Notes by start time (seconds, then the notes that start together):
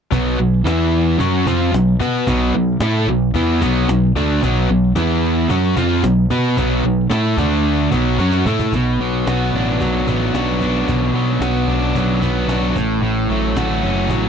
0.11 B1 B2 F#3 B3, cajon bass
0.39 B1 B2 F#3
0.53 cajon slap
0.65 E2 E3 B3 E4, cajon slap
1.20 F#2 F#3 C#4 F#4, cajon bass
1.47 F2 F3 C4 F4, cajon bass
1.72 B1 B2 F#3, cajon slap
2.00 B2 B3 F#4 B4, cajon bass
2.27 B1 B2 F#3 B3, cajon bass
2.54 B1 B2 F#3
2.68 cajon slap
2.80 A2 A3 E4 A4, cajon slap
3.07 B1 B2 F#3
3.34 E2 E3 B3 E4, cajon bass
3.61 B1 B2 F#3 B3, cajon bass
3.87 B1 B2 F#3, cajon slap
4.16 D2 D3 A3 D4, cajon bass
4.42 B1 B2 F#3 B3, cajon bass
4.69 B1 B2 F#3
4.96 E2 E3 B3 E4, cajon slap
5.49 F#2 F#3 C#4 F#4, cajon bass
5.76 F2 F3 C4 F4, cajon bass
6.03 B1 B2 F#3, cajon slap
6.30 B2 B3 F#4 B4, cajon bass
6.57 B1 B2 F#3 B3, cajon bass
6.84 B1 B2 F#3
7.09 A2 A3 E4 A4, cajon slap
7.37 D2 D3 A3 D4, cajon bass
7.91 B1 B2 F#3 B3, cajon bass
8.18 F#2 F#3 C#4 F#4, cajon slap
8.32 cajon slap
8.46 A2 A3 E4 A4, cajon bass
8.59 cajon bass
8.72 B1 B2, cajon bass
8.99 B1 F#3 B3
9.14 cajon slap
9.26 B1 B3 F#4, cajon slap
9.53 A1 D4
9.68 cajon slap
9.80 B1 F#3, cajon bass
10.07 A1 B3, cajon bass
10.33 B1 D4 F#4, cajon slap
10.61 B3 D4, cajon bass
10.88 B1 B2, cajon bass
11.13 B1 F#3 B3
11.30 cajon slap
11.39 B1 B3 F#4, cajon slap
11.67 B1 D4
11.82 cajon slap
11.95 B1 F#3, cajon bass
12.22 B1 B3, cajon bass
12.47 B1 D4 F#4, cajon slap
12.76 A1 A2, cajon bass
13.02 A1 A2
13.29 A1 F#3 A3
13.44 cajon slap
13.56 A1 A3 F#4, cajon slap
13.82 F#1 C#4
14.09 A1 F#3, cajon bass